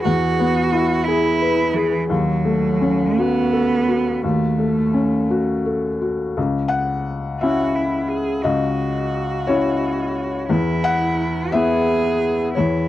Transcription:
Already playing: G#4
0.03 E2 F#4
0.39 B3
0.73 E4
1.04 E4 G#4
1.42 B4
1.74 E3 G#4
2.09 D#2 F#3
2.45 A3
2.81 C#4
3.17 B3 F#4
3.52 A4
3.88 F#4
4.22 D#2 A3
4.58 A3
4.93 C#4
5.30 F#4
5.66 A4
6.01 F#4
6.37 C#2
6.68 F#5
7.40 C#4 E4 F#4 E5
7.75 E4
8.08 G#4
8.42 C#2 F#4 D#5
9.47 C#4 E4 C#5
10.49 E2 E4
10.84 F#5
11.52 B3 E4 G#4 E5
12.55 E2 E4 C#5

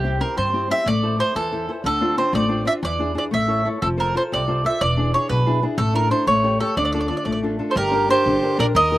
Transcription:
Already playing: C2 C3 G4
0.04 C4 E4 G4
0.20 C4 E4 G4 A#4
0.37 G2 G3 C5
0.53 C4 E4 G4
0.70 C4 E4 G4 E5
0.86 A1 A3 D5
1.03 E4 A4 C5
1.19 E4 A4 C5
1.35 E2 E3 A4
1.52 E4 A4 C5
1.69 E4 A4 C5
1.84 D2 D3 A4
2.01 C4 D4 F4
2.18 C4 D4 F4 C5
2.33 A1 A3 D5
2.49 C4 D4 F4
2.65 C4 D4 F4 E5
2.83 E2 E3 D5
2.99 D4 E4 G#4
3.15 D4 E4 G#4 D5
3.31 A1 A3 E5
3.48 E4 A4 C#5
3.65 E4 A4 C#5
3.82 F1 F3 A4
3.97 F4 A4 A#4 C5
4.15 F4 A4 C5
4.32 C2 C3 D5
4.48 F4 A4 C5
4.64 F4 A4 C5 E5
4.81 E1 E3 D5
4.97 D4 E4 G#4
5.14 D4 E4 G#4 C#5
5.29 B1 B2 B4
5.46 D4 E4 G#4
5.63 D4 E4 G#4
5.78 A1 A3 A4
5.94 D4 E4 A4 A#4
6.10 D4 E4 A4 C5
6.27 A1 A3 C#5
6.44 G4 A4 C#5
6.60 G4 A4 C#5
6.77 D2 D3 D5
6.85 D5
6.92 D4 F4 A4 D5
7.01 D5
7.08 D4 F4 A4 D5
7.17 D5
7.25 A1 A3 D5
7.32 D5
7.43 D4 F4 A4
7.59 D4 F4 A4
7.69 A4 C5
7.76 G1 G3 G4 A#4
7.91 D4 G4 A#4
8.09 D4 G4 A#4 C5
8.26 G1 D3
8.43 D4 G4 A#4
8.58 A#1 D4 G4 A#4 D5
8.75 D#2 D#3 A#4 D#5
8.91 D#4 G4 A#4

